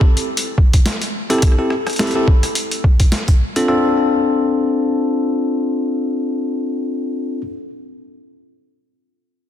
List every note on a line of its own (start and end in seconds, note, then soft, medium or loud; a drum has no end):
0.01 kick loud
0.17 closed hi-hat medium
0.37 closed hi-hat medium
0.58 kick loud
0.73 kick medium
0.73 closed hi-hat medium
0.86 snare loud
0.86 closed hi-hat medium
1.02 closed hi-hat soft
1.30 1.54 C4 medium
1.30 1.54 E4 medium
1.30 1.54 G4 medium
1.30 1.54 A4 loud
1.30 cross-stick soft
1.30 closed hi-hat soft
1.33 cross-stick soft
1.38 cross-stick soft
1.42 kick loud
1.42 cross-stick soft
1.42 closed hi-hat medium
1.48 cross-stick soft
1.52 cross-stick soft
1.59 1.74 C4 medium
1.59 1.74 E4 medium
1.59 1.74 G4 medium
1.59 1.74 A4 medium
1.70 cross-stick soft
1.87 cross-stick soft
1.87 closed hi-hat soft
1.90 closed hi-hat soft
1.93 closed hi-hat soft
1.96 2.13 C4 medium
1.96 2.13 E4 medium
1.96 2.13 G4 medium
1.96 snare loud
1.96 closed hi-hat soft
1.99 2.13 A4 loud
1.99 closed hi-hat medium
2.03 closed hi-hat soft
2.07 closed hi-hat soft
2.11 closed hi-hat soft
2.15 2.30 C4 medium
2.15 2.30 E4 medium
2.15 2.30 G4 medium
2.15 2.30 A4 medium
2.28 kick loud
2.43 cross-stick soft
2.43 closed hi-hat soft
2.55 closed hi-hat medium
2.71 closed hi-hat soft
2.84 kick loud
3.00 kick medium
3.00 closed hi-hat soft
3.12 snare loud
3.12 closed hi-hat medium
3.28 kick medium
3.28 closed hi-hat soft
3.56 3.67 C4 medium
3.56 3.67 D4 medium
3.56 3.67 F4 medium
3.56 3.67 A4 loud
3.56 closed hi-hat soft
3.68 7.41 C4 medium
3.68 7.41 D4 medium
3.68 7.41 F4 medium
3.68 7.41 A4 medium